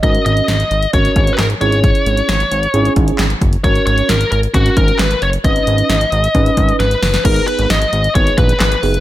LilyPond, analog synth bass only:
\new Staff \with { instrumentName = "Analog synth bass" } { \clef bass \time 4/4 \key gis \minor \tempo 4 = 133 gis,,8 gis,,8 gis,,8 gis,,8 gis,,8 gis,,8 gis,,8 gis,,8~ | gis,,8 gis,,8 gis,,8 gis,,8 gis,,8 gis,,8 gis,,8 fis,,8 | gis,,8 gis,,8 gis,,8 gis,,8 gis,,8 gis,,8 gis,,8 fis,,8 | gis,,8 gis,,8 gis,,8 gis,,8 gis,,8 gis,,8 gis,,8 fis,,8 |
gis,,8 r16 gis,,16 gis,,8 gis,,8 gis,,8 ais,,8 gis,,8 fis,,8 | }